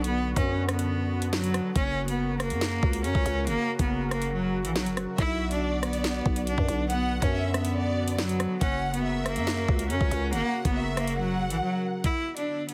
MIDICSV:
0, 0, Header, 1, 6, 480
1, 0, Start_track
1, 0, Key_signature, 2, "minor"
1, 0, Tempo, 428571
1, 47, Time_signature, 4, 2, 24, 8
1, 14265, End_track
2, 0, Start_track
2, 0, Title_t, "Violin section"
2, 0, Program_c, 0, 48
2, 5806, Note_on_c, 0, 76, 99
2, 6257, Note_off_c, 0, 76, 0
2, 6283, Note_on_c, 0, 74, 86
2, 7200, Note_off_c, 0, 74, 0
2, 7727, Note_on_c, 0, 78, 108
2, 8178, Note_off_c, 0, 78, 0
2, 8209, Note_on_c, 0, 76, 86
2, 8659, Note_off_c, 0, 76, 0
2, 8689, Note_on_c, 0, 74, 93
2, 9139, Note_off_c, 0, 74, 0
2, 9644, Note_on_c, 0, 78, 110
2, 10097, Note_off_c, 0, 78, 0
2, 10129, Note_on_c, 0, 76, 96
2, 11043, Note_off_c, 0, 76, 0
2, 11567, Note_on_c, 0, 78, 101
2, 12018, Note_off_c, 0, 78, 0
2, 12044, Note_on_c, 0, 76, 94
2, 12497, Note_off_c, 0, 76, 0
2, 12526, Note_on_c, 0, 78, 92
2, 13441, Note_off_c, 0, 78, 0
2, 14265, End_track
3, 0, Start_track
3, 0, Title_t, "Analog synth pad"
3, 0, Program_c, 1, 89
3, 0, Note_on_c, 1, 50, 87
3, 0, Note_on_c, 1, 59, 79
3, 0, Note_on_c, 1, 66, 96
3, 1929, Note_off_c, 1, 50, 0
3, 1929, Note_off_c, 1, 59, 0
3, 1929, Note_off_c, 1, 66, 0
3, 1966, Note_on_c, 1, 49, 90
3, 1966, Note_on_c, 1, 66, 95
3, 1966, Note_on_c, 1, 70, 81
3, 5768, Note_off_c, 1, 49, 0
3, 5768, Note_off_c, 1, 70, 0
3, 5806, Note_on_c, 1, 50, 85
3, 5806, Note_on_c, 1, 59, 81
3, 9602, Note_off_c, 1, 66, 0
3, 9608, Note_off_c, 1, 50, 0
3, 9608, Note_off_c, 1, 59, 0
3, 9647, Note_on_c, 1, 49, 89
3, 9647, Note_on_c, 1, 66, 97
3, 9647, Note_on_c, 1, 70, 80
3, 13449, Note_off_c, 1, 49, 0
3, 13449, Note_off_c, 1, 66, 0
3, 13449, Note_off_c, 1, 70, 0
3, 13486, Note_on_c, 1, 50, 84
3, 13486, Note_on_c, 1, 66, 93
3, 13487, Note_on_c, 1, 59, 77
3, 14265, Note_off_c, 1, 50, 0
3, 14265, Note_off_c, 1, 59, 0
3, 14265, Note_off_c, 1, 66, 0
3, 14265, End_track
4, 0, Start_track
4, 0, Title_t, "Cello"
4, 0, Program_c, 2, 42
4, 44, Note_on_c, 2, 59, 111
4, 384, Note_off_c, 2, 59, 0
4, 406, Note_on_c, 2, 61, 82
4, 745, Note_off_c, 2, 61, 0
4, 770, Note_on_c, 2, 59, 82
4, 1445, Note_off_c, 2, 59, 0
4, 1486, Note_on_c, 2, 54, 94
4, 1937, Note_off_c, 2, 54, 0
4, 1968, Note_on_c, 2, 61, 97
4, 2306, Note_off_c, 2, 61, 0
4, 2325, Note_on_c, 2, 59, 80
4, 2664, Note_off_c, 2, 59, 0
4, 2687, Note_on_c, 2, 58, 92
4, 3364, Note_off_c, 2, 58, 0
4, 3404, Note_on_c, 2, 61, 99
4, 3856, Note_off_c, 2, 61, 0
4, 3888, Note_on_c, 2, 58, 120
4, 4226, Note_off_c, 2, 58, 0
4, 4255, Note_on_c, 2, 59, 83
4, 4590, Note_off_c, 2, 59, 0
4, 4607, Note_on_c, 2, 58, 88
4, 4833, Note_off_c, 2, 58, 0
4, 4846, Note_on_c, 2, 54, 85
4, 5185, Note_off_c, 2, 54, 0
4, 5207, Note_on_c, 2, 52, 78
4, 5320, Note_off_c, 2, 52, 0
4, 5329, Note_on_c, 2, 54, 86
4, 5554, Note_off_c, 2, 54, 0
4, 5809, Note_on_c, 2, 64, 106
4, 6147, Note_off_c, 2, 64, 0
4, 6167, Note_on_c, 2, 62, 83
4, 6505, Note_off_c, 2, 62, 0
4, 6530, Note_on_c, 2, 59, 86
4, 7205, Note_off_c, 2, 59, 0
4, 7244, Note_on_c, 2, 62, 78
4, 7697, Note_off_c, 2, 62, 0
4, 7724, Note_on_c, 2, 59, 109
4, 8064, Note_off_c, 2, 59, 0
4, 8085, Note_on_c, 2, 61, 80
4, 8424, Note_off_c, 2, 61, 0
4, 8450, Note_on_c, 2, 59, 84
4, 9125, Note_off_c, 2, 59, 0
4, 9166, Note_on_c, 2, 54, 92
4, 9618, Note_off_c, 2, 54, 0
4, 9648, Note_on_c, 2, 61, 99
4, 9986, Note_off_c, 2, 61, 0
4, 10006, Note_on_c, 2, 59, 80
4, 10345, Note_off_c, 2, 59, 0
4, 10368, Note_on_c, 2, 58, 93
4, 11044, Note_off_c, 2, 58, 0
4, 11085, Note_on_c, 2, 61, 93
4, 11537, Note_off_c, 2, 61, 0
4, 11568, Note_on_c, 2, 58, 120
4, 11906, Note_off_c, 2, 58, 0
4, 11935, Note_on_c, 2, 59, 84
4, 12270, Note_off_c, 2, 59, 0
4, 12288, Note_on_c, 2, 58, 88
4, 12513, Note_off_c, 2, 58, 0
4, 12526, Note_on_c, 2, 54, 86
4, 12865, Note_off_c, 2, 54, 0
4, 12887, Note_on_c, 2, 52, 77
4, 13000, Note_off_c, 2, 52, 0
4, 13008, Note_on_c, 2, 54, 81
4, 13234, Note_off_c, 2, 54, 0
4, 13489, Note_on_c, 2, 64, 105
4, 13826, Note_off_c, 2, 64, 0
4, 13847, Note_on_c, 2, 62, 76
4, 14186, Note_off_c, 2, 62, 0
4, 14209, Note_on_c, 2, 59, 82
4, 14265, Note_off_c, 2, 59, 0
4, 14265, End_track
5, 0, Start_track
5, 0, Title_t, "808-style bass"
5, 0, Program_c, 3, 38
5, 0, Note_on_c, 3, 35, 106
5, 383, Note_off_c, 3, 35, 0
5, 408, Note_on_c, 3, 42, 102
5, 1803, Note_off_c, 3, 42, 0
5, 1967, Note_on_c, 3, 30, 104
5, 2807, Note_on_c, 3, 42, 99
5, 2824, Note_off_c, 3, 30, 0
5, 3149, Note_off_c, 3, 42, 0
5, 3167, Note_on_c, 3, 37, 106
5, 3406, Note_on_c, 3, 42, 102
5, 3423, Note_off_c, 3, 37, 0
5, 3521, Note_off_c, 3, 42, 0
5, 3528, Note_on_c, 3, 37, 104
5, 3640, Note_off_c, 3, 37, 0
5, 3646, Note_on_c, 3, 37, 110
5, 3887, Note_on_c, 3, 31, 98
5, 3904, Note_off_c, 3, 37, 0
5, 4001, Note_off_c, 3, 31, 0
5, 4248, Note_on_c, 3, 30, 105
5, 5207, Note_on_c, 3, 34, 105
5, 5224, Note_off_c, 3, 30, 0
5, 5447, Note_on_c, 3, 30, 107
5, 5464, Note_off_c, 3, 34, 0
5, 5675, Note_off_c, 3, 30, 0
5, 5807, Note_on_c, 3, 35, 111
5, 6962, Note_off_c, 3, 35, 0
5, 7007, Note_on_c, 3, 35, 104
5, 7353, Note_off_c, 3, 35, 0
5, 7367, Note_on_c, 3, 42, 104
5, 7480, Note_off_c, 3, 42, 0
5, 7487, Note_on_c, 3, 35, 104
5, 8063, Note_off_c, 3, 35, 0
5, 8088, Note_on_c, 3, 42, 102
5, 9482, Note_off_c, 3, 42, 0
5, 9646, Note_on_c, 3, 30, 107
5, 10487, Note_on_c, 3, 42, 96
5, 10504, Note_off_c, 3, 30, 0
5, 10829, Note_off_c, 3, 42, 0
5, 10847, Note_on_c, 3, 37, 109
5, 11087, Note_on_c, 3, 42, 104
5, 11104, Note_off_c, 3, 37, 0
5, 11201, Note_off_c, 3, 42, 0
5, 11208, Note_on_c, 3, 37, 107
5, 11320, Note_off_c, 3, 37, 0
5, 11327, Note_on_c, 3, 37, 112
5, 11567, Note_on_c, 3, 31, 101
5, 11584, Note_off_c, 3, 37, 0
5, 11681, Note_off_c, 3, 31, 0
5, 11928, Note_on_c, 3, 30, 106
5, 12887, Note_on_c, 3, 34, 105
5, 12904, Note_off_c, 3, 30, 0
5, 13007, Note_off_c, 3, 34, 0
5, 14265, End_track
6, 0, Start_track
6, 0, Title_t, "Drums"
6, 47, Note_on_c, 9, 42, 82
6, 159, Note_off_c, 9, 42, 0
6, 408, Note_on_c, 9, 36, 105
6, 411, Note_on_c, 9, 42, 77
6, 520, Note_off_c, 9, 36, 0
6, 523, Note_off_c, 9, 42, 0
6, 768, Note_on_c, 9, 37, 100
6, 769, Note_on_c, 9, 42, 78
6, 880, Note_off_c, 9, 37, 0
6, 881, Note_off_c, 9, 42, 0
6, 884, Note_on_c, 9, 42, 89
6, 996, Note_off_c, 9, 42, 0
6, 1365, Note_on_c, 9, 42, 85
6, 1477, Note_off_c, 9, 42, 0
6, 1487, Note_on_c, 9, 38, 114
6, 1599, Note_off_c, 9, 38, 0
6, 1609, Note_on_c, 9, 42, 73
6, 1721, Note_off_c, 9, 42, 0
6, 1728, Note_on_c, 9, 37, 102
6, 1728, Note_on_c, 9, 42, 74
6, 1840, Note_off_c, 9, 37, 0
6, 1840, Note_off_c, 9, 42, 0
6, 1966, Note_on_c, 9, 42, 81
6, 1967, Note_on_c, 9, 36, 113
6, 2078, Note_off_c, 9, 42, 0
6, 2079, Note_off_c, 9, 36, 0
6, 2330, Note_on_c, 9, 42, 76
6, 2442, Note_off_c, 9, 42, 0
6, 2687, Note_on_c, 9, 37, 101
6, 2688, Note_on_c, 9, 42, 74
6, 2799, Note_off_c, 9, 37, 0
6, 2800, Note_off_c, 9, 42, 0
6, 2803, Note_on_c, 9, 42, 88
6, 2915, Note_off_c, 9, 42, 0
6, 2927, Note_on_c, 9, 38, 124
6, 3039, Note_off_c, 9, 38, 0
6, 3167, Note_on_c, 9, 36, 94
6, 3279, Note_off_c, 9, 36, 0
6, 3285, Note_on_c, 9, 42, 84
6, 3397, Note_off_c, 9, 42, 0
6, 3408, Note_on_c, 9, 42, 76
6, 3520, Note_off_c, 9, 42, 0
6, 3528, Note_on_c, 9, 36, 99
6, 3640, Note_off_c, 9, 36, 0
6, 3648, Note_on_c, 9, 42, 79
6, 3760, Note_off_c, 9, 42, 0
6, 3886, Note_on_c, 9, 42, 82
6, 3998, Note_off_c, 9, 42, 0
6, 4248, Note_on_c, 9, 36, 106
6, 4250, Note_on_c, 9, 42, 75
6, 4360, Note_off_c, 9, 36, 0
6, 4362, Note_off_c, 9, 42, 0
6, 4607, Note_on_c, 9, 37, 98
6, 4608, Note_on_c, 9, 42, 75
6, 4719, Note_off_c, 9, 37, 0
6, 4720, Note_off_c, 9, 42, 0
6, 4723, Note_on_c, 9, 42, 87
6, 4835, Note_off_c, 9, 42, 0
6, 5205, Note_on_c, 9, 42, 86
6, 5317, Note_off_c, 9, 42, 0
6, 5327, Note_on_c, 9, 38, 116
6, 5439, Note_off_c, 9, 38, 0
6, 5448, Note_on_c, 9, 42, 75
6, 5560, Note_off_c, 9, 42, 0
6, 5568, Note_on_c, 9, 37, 99
6, 5568, Note_on_c, 9, 42, 71
6, 5680, Note_off_c, 9, 37, 0
6, 5680, Note_off_c, 9, 42, 0
6, 5806, Note_on_c, 9, 42, 81
6, 5807, Note_on_c, 9, 36, 111
6, 5918, Note_off_c, 9, 42, 0
6, 5919, Note_off_c, 9, 36, 0
6, 6170, Note_on_c, 9, 42, 78
6, 6282, Note_off_c, 9, 42, 0
6, 6527, Note_on_c, 9, 37, 95
6, 6529, Note_on_c, 9, 42, 75
6, 6639, Note_off_c, 9, 37, 0
6, 6641, Note_off_c, 9, 42, 0
6, 6643, Note_on_c, 9, 42, 86
6, 6755, Note_off_c, 9, 42, 0
6, 6767, Note_on_c, 9, 38, 123
6, 6879, Note_off_c, 9, 38, 0
6, 7007, Note_on_c, 9, 36, 93
6, 7119, Note_off_c, 9, 36, 0
6, 7125, Note_on_c, 9, 42, 87
6, 7237, Note_off_c, 9, 42, 0
6, 7247, Note_on_c, 9, 42, 74
6, 7359, Note_off_c, 9, 42, 0
6, 7368, Note_on_c, 9, 36, 96
6, 7480, Note_off_c, 9, 36, 0
6, 7488, Note_on_c, 9, 42, 79
6, 7600, Note_off_c, 9, 42, 0
6, 7726, Note_on_c, 9, 42, 78
6, 7838, Note_off_c, 9, 42, 0
6, 8088, Note_on_c, 9, 36, 106
6, 8091, Note_on_c, 9, 42, 77
6, 8200, Note_off_c, 9, 36, 0
6, 8203, Note_off_c, 9, 42, 0
6, 8448, Note_on_c, 9, 37, 98
6, 8449, Note_on_c, 9, 42, 74
6, 8560, Note_off_c, 9, 37, 0
6, 8561, Note_off_c, 9, 42, 0
6, 8564, Note_on_c, 9, 42, 88
6, 8676, Note_off_c, 9, 42, 0
6, 9045, Note_on_c, 9, 42, 84
6, 9157, Note_off_c, 9, 42, 0
6, 9167, Note_on_c, 9, 38, 116
6, 9279, Note_off_c, 9, 38, 0
6, 9288, Note_on_c, 9, 42, 73
6, 9400, Note_off_c, 9, 42, 0
6, 9407, Note_on_c, 9, 37, 104
6, 9408, Note_on_c, 9, 42, 71
6, 9519, Note_off_c, 9, 37, 0
6, 9520, Note_off_c, 9, 42, 0
6, 9646, Note_on_c, 9, 42, 81
6, 9647, Note_on_c, 9, 36, 113
6, 9758, Note_off_c, 9, 42, 0
6, 9759, Note_off_c, 9, 36, 0
6, 10010, Note_on_c, 9, 42, 78
6, 10122, Note_off_c, 9, 42, 0
6, 10367, Note_on_c, 9, 37, 98
6, 10369, Note_on_c, 9, 42, 75
6, 10479, Note_off_c, 9, 37, 0
6, 10481, Note_off_c, 9, 42, 0
6, 10483, Note_on_c, 9, 42, 87
6, 10595, Note_off_c, 9, 42, 0
6, 10607, Note_on_c, 9, 38, 125
6, 10719, Note_off_c, 9, 38, 0
6, 10847, Note_on_c, 9, 36, 95
6, 10959, Note_off_c, 9, 36, 0
6, 10965, Note_on_c, 9, 42, 83
6, 11077, Note_off_c, 9, 42, 0
6, 11088, Note_on_c, 9, 42, 75
6, 11200, Note_off_c, 9, 42, 0
6, 11208, Note_on_c, 9, 36, 104
6, 11320, Note_off_c, 9, 36, 0
6, 11328, Note_on_c, 9, 42, 81
6, 11440, Note_off_c, 9, 42, 0
6, 11567, Note_on_c, 9, 42, 82
6, 11679, Note_off_c, 9, 42, 0
6, 11928, Note_on_c, 9, 36, 106
6, 11931, Note_on_c, 9, 42, 74
6, 12040, Note_off_c, 9, 36, 0
6, 12043, Note_off_c, 9, 42, 0
6, 12288, Note_on_c, 9, 37, 98
6, 12289, Note_on_c, 9, 42, 76
6, 12400, Note_off_c, 9, 37, 0
6, 12401, Note_off_c, 9, 42, 0
6, 12404, Note_on_c, 9, 42, 87
6, 12516, Note_off_c, 9, 42, 0
6, 12885, Note_on_c, 9, 42, 83
6, 12997, Note_off_c, 9, 42, 0
6, 13486, Note_on_c, 9, 42, 79
6, 13487, Note_on_c, 9, 36, 106
6, 13598, Note_off_c, 9, 42, 0
6, 13599, Note_off_c, 9, 36, 0
6, 13850, Note_on_c, 9, 42, 73
6, 13962, Note_off_c, 9, 42, 0
6, 14209, Note_on_c, 9, 42, 72
6, 14265, Note_off_c, 9, 42, 0
6, 14265, End_track
0, 0, End_of_file